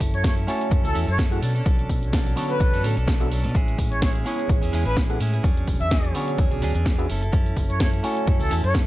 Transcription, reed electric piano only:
0.47 A3 E4 F#4 C#5 G#5
1.31 A3 E4 F#4 G#4 F#5
2.36 D3 B3 F#4 A4 C#5
3.20 B3 D4 F#4 A4 E5
4.25 B3 E4 G#4 C#5
5.09 B3 E4 G#4 A4 F#5
6.14 D3 B3 F#4 G#4 C#5
6.98 B3 D4 F#4 G#4 E5
8.03 A3 E4 F#4 C#5 G#5

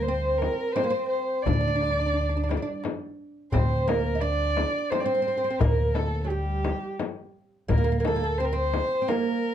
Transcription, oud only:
0.08 C4
0.76 C4
0.84 A#3
0.90 C4
1.47 D4
1.53 D4
1.61 D4
1.68 D4
1.76 D4
1.83 D4
1.91 D4
2.00 D4
2.06 D4
2.14 D4
2.21 D4
2.29 D4
2.37 D4
2.44 D4
2.50 D4
2.57 D4
2.62 D4
3.53 C4
3.88 A#3
4.15 D#4
4.21 D4
4.92 C4
5.06 C4
5.15 C4
5.22 C4
5.28 C4
5.37 C4
5.44 C4
5.50 C4
5.61 A#3
6.24 F#3
6.30 G3
7.68 A#3
7.78 A#3
7.84 A#3
7.92 A#3
8.00 A#3
8.07 A#3
8.16 A#3
8.24 A#3
8.40 C4
8.53 C4
9.02 C4
9.08 A#3

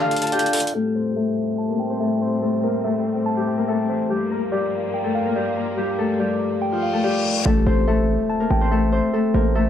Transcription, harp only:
Already playing: G4 A4 G5 A5
0.01 F4 F5
0.22 A4 A5
0.33 G4 G5
0.75 A3 A4
0.96 C4 C5
1.16 A3 A4
1.69 A#3 A#4
1.90 C4 C5
2.00 A3 A4
2.21 C4 C5
2.42 A3 A4
2.63 A#3 A#4
2.85 A3 A4
3.37 G3 G4
3.58 A#3 A#4
3.68 A3 A4
3.89 E3 E4
4.10 G3 G4
4.31 A#3 A#4
4.52 G3 G4
5.04 A3 A4
5.25 A#3 A#4
5.36 G3 G4
5.57 A#3 A#4
5.78 G3 G4
5.99 A3 A4
6.20 G3 G4
6.72 F3 F4
6.93 A3 A4
7.04 G3 G4
7.46 A3 A4
7.67 C4 C5
7.88 A3 A4
8.40 A#3 A#4
8.61 C4 C5
8.72 A3 A4
8.92 C4 C5
9.13 A3 A4
9.34 A#3 A#4
9.55 A3 A4

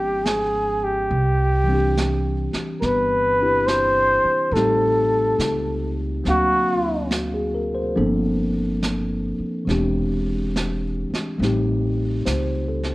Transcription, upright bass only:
Already playing: G#1
1.11 C2
2.54 muted upright bass stroke
2.82 G1
4.24 muted upright bass stroke
4.51 A1
5.39 C#2
6.26 D2
7.97 G1
9.39 muted upright bass stroke
9.67 E1
11.10 muted upright bass stroke
11.39 A1
12.26 C#2

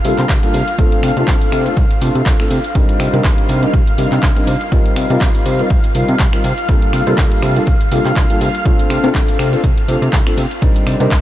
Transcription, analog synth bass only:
0.05 C3
0.18 C3
0.29 C2
0.54 C3
0.78 C2
1.03 C3
1.17 C3
1.28 C2
1.52 C3
1.77 C2
2.02 C3
2.15 C3
2.26 C2
2.51 C3
2.75 C2
3.00 C3
3.13 C3
3.24 C2
3.49 C3
3.74 C2
3.98 C3
4.12 C3
4.23 C2
4.47 C3
4.72 C2
4.97 C3
5.10 C3
5.21 C2
5.46 C3
5.70 C2
5.95 C3
6.09 C3
6.20 C2
6.44 C3
6.69 C2
6.93 C3
7.07 C3
7.18 C2
7.42 C3
7.67 C2
7.92 C3
8.05 C3
8.16 C2
8.41 C3
8.65 C2
8.90 C3
9.04 C3
9.15 C2
9.39 C3
9.64 C2
9.88 C3
10.02 C3
10.13 C2
10.37 C3
10.62 C2
10.87 C3
11.00 C3
11.11 C2

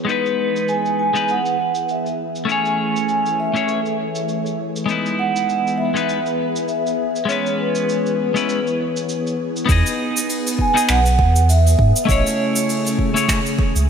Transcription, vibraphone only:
0.09 B4
0.69 G#5
0.99 G#5
1.30 F#5
1.91 E5
2.51 G#5
3.40 E5
5.19 F#5
5.78 E5
6.68 E5
7.28 C#5
7.58 B4
10.61 G#5
10.90 F#5
11.49 E5
12.03 D#5
12.10 C#5

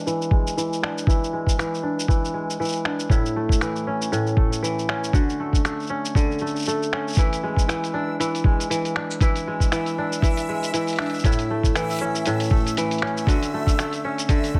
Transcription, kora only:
Already playing: G#3 D4 E4
0.07 E3
0.31 G#3
0.57 E3
0.82 D4
1.08 E3 E4
1.33 G#3
1.59 E3
1.83 D4
2.08 E3
2.34 G#3
2.60 E3
2.85 D4
3.10 A2 E4
3.36 A3
3.62 E3
3.87 C#4
4.12 A2
4.37 A3
4.63 E3
4.89 C#4
5.14 D3 F#4
5.40 A3
5.65 A3
5.90 C#4
6.16 D3
6.41 A3
6.67 A3
6.93 C#4
7.18 E3 E4
7.43 G#3
7.69 E3
7.94 D4
8.20 E3
8.45 G#3
8.70 E3
8.96 D4
9.21 E3 E4
9.47 G#3
9.72 E3
9.98 D4
10.23 E3
10.49 G#3
10.74 E3
10.99 D4
11.25 A2 E4
11.51 A3
11.76 E3
12.01 C#4
12.27 A2
12.52 A3
12.78 E3
13.02 C#4
13.28 D3 F#4
13.54 A3
13.80 A3
14.05 C#4
14.30 D3
14.55 A3

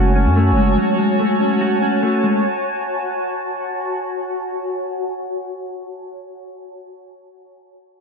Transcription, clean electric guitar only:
Already playing: F#3 G#3 A3 C#4 F#4
0.16 C#4
0.36 A3
0.57 G#3
0.78 F#3
0.99 G#3
1.19 A3
1.40 C#4
1.61 F#4
1.82 C#4
2.03 A3
2.24 G#3

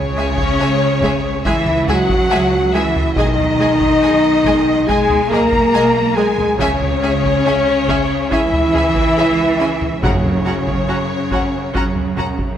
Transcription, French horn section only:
Already playing: C#4
1.45 E4
1.88 F#4
2.75 E4
3.17 D#4
4.88 G#4
5.31 A#4
6.16 G#4
6.59 C#4
8.30 E4
10.02 C#4

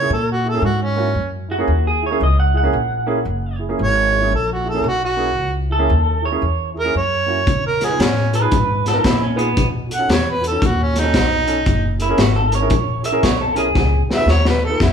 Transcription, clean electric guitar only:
1.51 F#4
1.87 G#4
2.06 C#5
2.23 D#5
2.40 F#5
2.57 F#5
5.72 A4
6.25 C#5
8.35 B4
8.88 A4
9.05 E4
9.21 C#4
9.37 B3
12.02 E4
12.20 F#4
12.36 A4
12.55 C#5
13.06 E5
13.23 C#5
13.41 A4
13.57 G#4

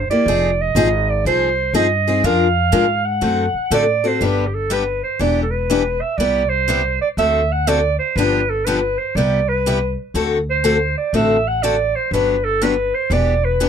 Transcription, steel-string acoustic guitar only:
0.11 A#3 E4 G4
0.28 F3 C4 D#4 G#4
0.76 F3 C4 D#4 G#4
1.26 F3 C4 D#4 G#4
1.74 F3 C4 D#4 G#4
2.08 C4 D#4 G#4
2.24 F3 G#3 D4 F4 A#4
2.72 F3 G#3 D4 F4 A#4
3.21 D3 A3 C4 F#4 A4
3.71 D3 A3 C4 F#4 A4
4.04 C4 F#4 A4
4.21 D3 G3 B3 D4 G4
4.70 D3 G3 B3 D4 G4
5.19 E3 B3 D4 G4
5.70 E3 B3 D4 G4
6.20 C3 G3 B3 E4 G4
6.68 C3 G3 B3 E4 G4
7.18 D3 A3 C4 F#4 A4
7.67 D3 A3 C4 F#4 A4
8.17 D3 F3 B3 D4 G4
8.67 D3 F3 B3 D4 G4
9.17 C3 G3 B3 E4 G4
9.66 C3 G3 B3 E4 G4
10.15 D3 A3 C4 F#4 A4
10.64 D3 A3 C4 F#4 A4
11.14 D3 A3 C4 F#4 A4
11.63 D3 A3 C4 F#4 A4
12.13 D3 F#3 B3 D4 G4
12.61 D3 F#3 B3 D4 G4
13.11 E3 B3 D4 G4
13.60 E3 B3 D4 G4

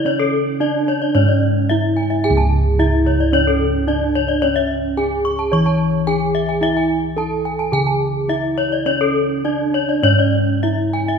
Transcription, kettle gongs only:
Already playing: C#3
0.05 C#4
0.60 D4
1.15 G#2
1.70 D4
2.25 G#4
2.30 C#2
2.80 D4
3.89 D4
4.44 C#4
4.98 D4
5.53 E3
6.07 D4
6.61 E4
7.17 D4
7.73 C#3
8.28 D4
8.86 C#4
9.44 D4
10.03 G#2
10.63 D4

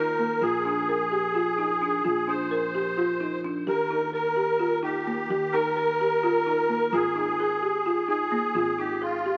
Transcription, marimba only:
Already playing: D#4
0.19 A#3
0.42 F4
0.65 D4
0.89 A#4
1.12 G4
1.35 F4
1.58 D#4
1.82 D4
2.04 F4
2.28 D4
2.51 A#4
2.75 G4
2.97 F4
3.20 D#4
3.44 D4
3.67 G4
3.90 D#4
4.13 A#4
4.36 G4
4.59 F4
4.83 D#4
5.07 A#3
5.30 G4
5.54 D#4
5.77 A#4
6.01 G4
6.23 F4
6.46 D#4
6.69 A#3
6.93 F4
7.16 D#4
7.40 G#4
7.63 G4
7.86 F4
8.08 D#4
8.31 A#3
8.55 F4
8.79 D#4
9.02 G#4
9.26 G4

